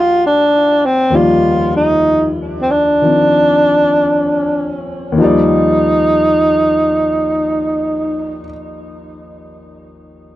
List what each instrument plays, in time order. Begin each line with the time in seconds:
Already playing: grand piano D#2 D#3 F3 G3 D5
0.00 tenor saxophone F4
0.26 tenor saxophone D4
0.86 tenor saxophone C4
1.10 grand piano D#2 D#3 F3 G3
1.15 tenor saxophone F4, grand piano D5
1.76 tenor saxophone D#4
2.62 tenor saxophone C4
2.71 tenor saxophone D4
3.01 grand piano D#3 F3 C4
5.12 grand piano D#2 D#3
5.18 grand piano F3 G3, tenor saxophone D#4
5.24 grand piano D5